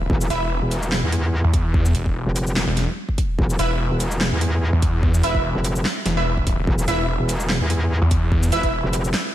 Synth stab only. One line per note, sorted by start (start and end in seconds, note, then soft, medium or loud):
0.30 0.41 E4 loud
0.30 0.41 B4 medium
0.30 0.41 E5 loud
3.59 3.70 E4 loud
3.59 3.70 B4 loud
3.59 3.70 E5 loud
5.23 5.39 E4 loud
5.23 5.39 B4 medium
5.23 5.39 E5 loud
6.17 6.26 E4 medium
6.17 6.26 B4 medium
6.17 6.26 E5 medium
6.88 6.98 E4 loud
6.88 6.98 B4 medium
6.88 6.98 E5 loud
8.52 8.68 E4 loud
8.52 8.68 B4 medium
8.52 8.68 E5 loud